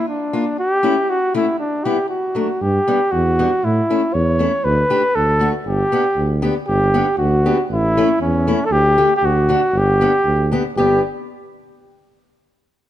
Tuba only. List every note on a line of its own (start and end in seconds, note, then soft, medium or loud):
2.62 2.78 G2 loud
3.13 3.46 E2 medium
3.64 3.81 A2 loud
4.14 4.47 E2 loud
4.65 4.81 D2 loud
5.16 5.48 D2 loud
5.66 5.83 G1 loud
6.16 6.50 D2 medium
6.67 7.01 G1 loud
7.17 7.51 D2 loud
7.69 8.03 A1 medium
8.21 8.54 E2 medium
8.71 9.04 D2 loud
9.22 9.55 D2 loud
9.73 10.06 G1 loud
10.25 10.58 D2 medium
10.75 10.99 G1 medium